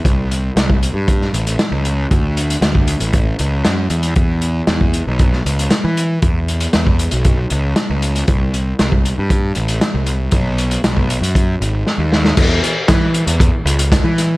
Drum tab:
CC |----------------|----------------|----------------|----------------|
HH |x-x-x-x-x-xxx-x-|x-xxx-xxx-x-x-xx|x-x-x-x-x-xxx-x-|x-xxx-xxx-x-x-xx|
SD |----o----o--o---|----o-------o---|----o----o--o---|----o-------o---|
BD |o----o--o-------|o----o--o-------|o----o--o-------|o----o--o-------|

CC |----------------|----------------|x---------------|
HH |x-x-x-x-x-xxx-x-|x-xxx-xxx-x-----|--x-x-xxx-xxx-x-|
SD |----o-------o---|----o-------o-oo|----o-------o-o-|
BD |o----o--o-------|o----o--o-------|o---o---o---o---|